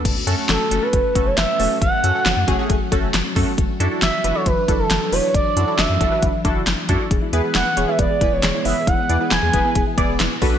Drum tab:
CC |x-------|--------|--------|--------|
HH |xxxxxxxo|xxxxxxxo|xxxxxxxo|xxxxxxxx|
CP |--x---x-|--x---x-|--x---x-|--x---x-|
SD |--o---o-|--o---o-|--o---o-|--o---o-|
BD |o---oo--|o--ooo-o|o---oo--|o--ooo-o|

CC |--------|--------|
HH |xxxxxxxo|xxxxxxxo|
CP |--x---x-|--x---x-|
SD |--o---o-|--o---o-|
BD |o---oo--|o--ooo-o|